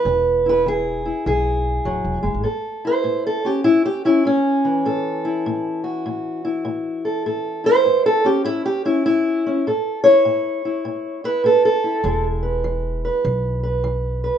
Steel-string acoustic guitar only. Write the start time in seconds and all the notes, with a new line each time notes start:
Already playing: E4 B4
0.06 E3
0.46 E4 B4
0.66 E3 G#4
1.05 E4
1.26 E3 G#4
1.85 F#3
2.23 G#3
2.43 A2 A4
2.85 E4 C5
3.04 A2
3.27 A4
3.45 C#4 G4
3.64 A2 E4
3.85 G4
4.05 C#4 E4
4.25 A2 C#4
4.65 E3
4.85 A2 A4
5.25 E4
5.46 A2
5.84 F#4
6.06 A2
6.45 E4
6.65 A2
7.05 A4
7.26 A2 A4
7.64 E4 C5
7.85 A2
8.06 A4
8.25 C#4 G4
8.45 A2 E4
8.66 G4
8.85 C#4 E4
9.06 A2 E4
9.46 C#4
9.67 A2 A4
10.04 E4 C#5
10.25 A2
10.65 E4
10.85 A2
11.24 E4 B4
11.44 A2 A4
11.65 A4
11.84 E4
12.04 E3 G#3 E4
12.43 B4
12.64 E3
13.05 B4
13.25 E3
13.63 B4
13.84 E3
14.24 B4